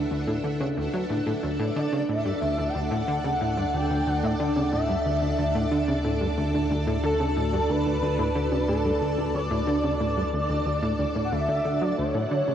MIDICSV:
0, 0, Header, 1, 6, 480
1, 0, Start_track
1, 0, Key_signature, 2, "major"
1, 0, Tempo, 659341
1, 1042, Time_signature, 4, 2, 24, 8
1, 9135, End_track
2, 0, Start_track
2, 0, Title_t, "Analog synth lead"
2, 0, Program_c, 0, 81
2, 1231, Note_on_c, 0, 76, 60
2, 1283, Note_on_c, 0, 74, 85
2, 1294, Note_off_c, 0, 76, 0
2, 1517, Note_off_c, 0, 74, 0
2, 1522, Note_on_c, 0, 76, 95
2, 1950, Note_on_c, 0, 79, 78
2, 1961, Note_off_c, 0, 76, 0
2, 2002, Note_on_c, 0, 78, 111
2, 2013, Note_off_c, 0, 79, 0
2, 2722, Note_on_c, 0, 79, 102
2, 2733, Note_off_c, 0, 78, 0
2, 2963, Note_on_c, 0, 78, 109
2, 2974, Note_off_c, 0, 79, 0
2, 3083, Note_on_c, 0, 74, 96
2, 3094, Note_off_c, 0, 78, 0
2, 3438, Note_off_c, 0, 74, 0
2, 3442, Note_on_c, 0, 76, 102
2, 4613, Note_off_c, 0, 76, 0
2, 5121, Note_on_c, 0, 69, 87
2, 5601, Note_on_c, 0, 71, 101
2, 5612, Note_off_c, 0, 69, 0
2, 6316, Note_off_c, 0, 71, 0
2, 6321, Note_on_c, 0, 69, 92
2, 6772, Note_off_c, 0, 69, 0
2, 6799, Note_on_c, 0, 74, 126
2, 8160, Note_off_c, 0, 74, 0
2, 8189, Note_on_c, 0, 78, 79
2, 8240, Note_on_c, 0, 76, 107
2, 8251, Note_off_c, 0, 78, 0
2, 8601, Note_on_c, 0, 74, 97
2, 8612, Note_off_c, 0, 76, 0
2, 8717, Note_off_c, 0, 74, 0
2, 8721, Note_on_c, 0, 73, 119
2, 9135, Note_off_c, 0, 73, 0
2, 9135, End_track
3, 0, Start_track
3, 0, Title_t, "String machine"
3, 0, Program_c, 1, 50
3, 0, Note_on_c, 1, 62, 78
3, 0, Note_on_c, 1, 69, 71
3, 0, Note_on_c, 1, 76, 71
3, 0, Note_on_c, 1, 78, 84
3, 1012, Note_off_c, 1, 76, 0
3, 1036, Note_off_c, 1, 78, 0
3, 1042, Note_on_c, 1, 74, 70
3, 1042, Note_on_c, 1, 81, 86
3, 8692, Note_off_c, 1, 62, 0
3, 8692, Note_off_c, 1, 69, 0
3, 8693, Note_off_c, 1, 74, 0
3, 8716, Note_off_c, 1, 81, 0
3, 8723, Note_on_c, 1, 62, 78
3, 8723, Note_on_c, 1, 69, 74
3, 8723, Note_on_c, 1, 78, 87
3, 9135, Note_off_c, 1, 62, 0
3, 9135, Note_off_c, 1, 69, 0
3, 9135, Note_off_c, 1, 78, 0
3, 9135, End_track
4, 0, Start_track
4, 0, Title_t, "Synth texture"
4, 0, Program_c, 2, 99
4, 0, Note_on_c, 2, 62, 79
4, 0, Note_on_c, 2, 71, 76
4, 1040, Note_on_c, 2, 74, 80
4, 1064, Note_off_c, 2, 71, 0
4, 4882, Note_on_c, 2, 66, 77
4, 4905, Note_off_c, 2, 74, 0
4, 8730, Note_off_c, 2, 62, 0
4, 8746, Note_off_c, 2, 66, 0
4, 9135, End_track
5, 0, Start_track
5, 0, Title_t, "Analog synth bass"
5, 0, Program_c, 3, 38
5, 80, Note_on_c, 3, 38, 76
5, 195, Note_off_c, 3, 38, 0
5, 200, Note_on_c, 3, 45, 93
5, 280, Note_off_c, 3, 45, 0
5, 320, Note_on_c, 3, 50, 73
5, 435, Note_off_c, 3, 50, 0
5, 439, Note_on_c, 3, 49, 95
5, 554, Note_off_c, 3, 49, 0
5, 560, Note_on_c, 3, 38, 99
5, 640, Note_off_c, 3, 38, 0
5, 680, Note_on_c, 3, 54, 89
5, 760, Note_off_c, 3, 54, 0
5, 801, Note_on_c, 3, 45, 73
5, 881, Note_off_c, 3, 45, 0
5, 921, Note_on_c, 3, 45, 96
5, 969, Note_off_c, 3, 45, 0
5, 1042, Note_on_c, 3, 38, 81
5, 1156, Note_off_c, 3, 38, 0
5, 1161, Note_on_c, 3, 45, 100
5, 1241, Note_off_c, 3, 45, 0
5, 1282, Note_on_c, 3, 50, 103
5, 1361, Note_off_c, 3, 50, 0
5, 1402, Note_on_c, 3, 49, 72
5, 1481, Note_off_c, 3, 49, 0
5, 1521, Note_on_c, 3, 45, 80
5, 1635, Note_off_c, 3, 45, 0
5, 1641, Note_on_c, 3, 43, 74
5, 1689, Note_off_c, 3, 43, 0
5, 1761, Note_on_c, 3, 38, 73
5, 1875, Note_off_c, 3, 38, 0
5, 1881, Note_on_c, 3, 38, 72
5, 1961, Note_off_c, 3, 38, 0
5, 2001, Note_on_c, 3, 38, 74
5, 2115, Note_off_c, 3, 38, 0
5, 2121, Note_on_c, 3, 45, 95
5, 2201, Note_off_c, 3, 45, 0
5, 2242, Note_on_c, 3, 50, 99
5, 2321, Note_off_c, 3, 50, 0
5, 2362, Note_on_c, 3, 49, 71
5, 2441, Note_off_c, 3, 49, 0
5, 2483, Note_on_c, 3, 45, 81
5, 2596, Note_off_c, 3, 45, 0
5, 2602, Note_on_c, 3, 43, 70
5, 2649, Note_off_c, 3, 43, 0
5, 2721, Note_on_c, 3, 38, 72
5, 2835, Note_off_c, 3, 38, 0
5, 2841, Note_on_c, 3, 38, 74
5, 2921, Note_off_c, 3, 38, 0
5, 2961, Note_on_c, 3, 38, 77
5, 3075, Note_off_c, 3, 38, 0
5, 3081, Note_on_c, 3, 45, 102
5, 3161, Note_off_c, 3, 45, 0
5, 3202, Note_on_c, 3, 50, 104
5, 3281, Note_off_c, 3, 50, 0
5, 3321, Note_on_c, 3, 49, 74
5, 3401, Note_off_c, 3, 49, 0
5, 3441, Note_on_c, 3, 45, 82
5, 3555, Note_off_c, 3, 45, 0
5, 3561, Note_on_c, 3, 43, 74
5, 3609, Note_off_c, 3, 43, 0
5, 3681, Note_on_c, 3, 38, 73
5, 3795, Note_off_c, 3, 38, 0
5, 3801, Note_on_c, 3, 38, 73
5, 3881, Note_off_c, 3, 38, 0
5, 3921, Note_on_c, 3, 38, 79
5, 4035, Note_off_c, 3, 38, 0
5, 4041, Note_on_c, 3, 45, 96
5, 4121, Note_off_c, 3, 45, 0
5, 4161, Note_on_c, 3, 50, 98
5, 4241, Note_off_c, 3, 50, 0
5, 4281, Note_on_c, 3, 49, 71
5, 4361, Note_off_c, 3, 49, 0
5, 4401, Note_on_c, 3, 45, 82
5, 4515, Note_off_c, 3, 45, 0
5, 4520, Note_on_c, 3, 43, 71
5, 4569, Note_off_c, 3, 43, 0
5, 4641, Note_on_c, 3, 38, 72
5, 4755, Note_off_c, 3, 38, 0
5, 4762, Note_on_c, 3, 38, 75
5, 4842, Note_off_c, 3, 38, 0
5, 4881, Note_on_c, 3, 38, 81
5, 4995, Note_off_c, 3, 38, 0
5, 5001, Note_on_c, 3, 45, 98
5, 5081, Note_off_c, 3, 45, 0
5, 5122, Note_on_c, 3, 50, 99
5, 5201, Note_off_c, 3, 50, 0
5, 5242, Note_on_c, 3, 49, 72
5, 5321, Note_off_c, 3, 49, 0
5, 5362, Note_on_c, 3, 45, 84
5, 5476, Note_off_c, 3, 45, 0
5, 5482, Note_on_c, 3, 43, 74
5, 5530, Note_off_c, 3, 43, 0
5, 5602, Note_on_c, 3, 38, 75
5, 5716, Note_off_c, 3, 38, 0
5, 5721, Note_on_c, 3, 38, 73
5, 5801, Note_off_c, 3, 38, 0
5, 5842, Note_on_c, 3, 38, 75
5, 5956, Note_off_c, 3, 38, 0
5, 5963, Note_on_c, 3, 45, 96
5, 6042, Note_off_c, 3, 45, 0
5, 6082, Note_on_c, 3, 50, 98
5, 6161, Note_off_c, 3, 50, 0
5, 6201, Note_on_c, 3, 49, 71
5, 6281, Note_off_c, 3, 49, 0
5, 6322, Note_on_c, 3, 45, 82
5, 6436, Note_off_c, 3, 45, 0
5, 6443, Note_on_c, 3, 43, 70
5, 6490, Note_off_c, 3, 43, 0
5, 6562, Note_on_c, 3, 38, 74
5, 6676, Note_off_c, 3, 38, 0
5, 6682, Note_on_c, 3, 38, 73
5, 6761, Note_off_c, 3, 38, 0
5, 6801, Note_on_c, 3, 38, 82
5, 6915, Note_off_c, 3, 38, 0
5, 6922, Note_on_c, 3, 45, 105
5, 7001, Note_off_c, 3, 45, 0
5, 7041, Note_on_c, 3, 50, 100
5, 7121, Note_off_c, 3, 50, 0
5, 7161, Note_on_c, 3, 49, 70
5, 7241, Note_off_c, 3, 49, 0
5, 7282, Note_on_c, 3, 45, 79
5, 7396, Note_off_c, 3, 45, 0
5, 7401, Note_on_c, 3, 43, 75
5, 7449, Note_off_c, 3, 43, 0
5, 7522, Note_on_c, 3, 38, 75
5, 7636, Note_off_c, 3, 38, 0
5, 7642, Note_on_c, 3, 38, 76
5, 7721, Note_off_c, 3, 38, 0
5, 7761, Note_on_c, 3, 38, 78
5, 7875, Note_off_c, 3, 38, 0
5, 7882, Note_on_c, 3, 45, 97
5, 7961, Note_off_c, 3, 45, 0
5, 8002, Note_on_c, 3, 38, 74
5, 8050, Note_off_c, 3, 38, 0
5, 8122, Note_on_c, 3, 45, 76
5, 8236, Note_off_c, 3, 45, 0
5, 8243, Note_on_c, 3, 38, 96
5, 8356, Note_off_c, 3, 38, 0
5, 8363, Note_on_c, 3, 50, 72
5, 8442, Note_off_c, 3, 50, 0
5, 8482, Note_on_c, 3, 50, 74
5, 8596, Note_off_c, 3, 50, 0
5, 8602, Note_on_c, 3, 54, 72
5, 8682, Note_off_c, 3, 54, 0
5, 8723, Note_on_c, 3, 38, 78
5, 8836, Note_off_c, 3, 38, 0
5, 8842, Note_on_c, 3, 45, 102
5, 8921, Note_off_c, 3, 45, 0
5, 8962, Note_on_c, 3, 50, 101
5, 9042, Note_off_c, 3, 50, 0
5, 9083, Note_on_c, 3, 49, 75
5, 9135, Note_off_c, 3, 49, 0
5, 9135, End_track
6, 0, Start_track
6, 0, Title_t, "Sub bass"
6, 0, Program_c, 4, 38
6, 0, Note_on_c, 4, 38, 83
6, 1017, Note_off_c, 4, 38, 0
6, 1040, Note_on_c, 4, 38, 83
6, 8697, Note_off_c, 4, 38, 0
6, 8720, Note_on_c, 4, 38, 84
6, 9135, Note_off_c, 4, 38, 0
6, 9135, End_track
0, 0, End_of_file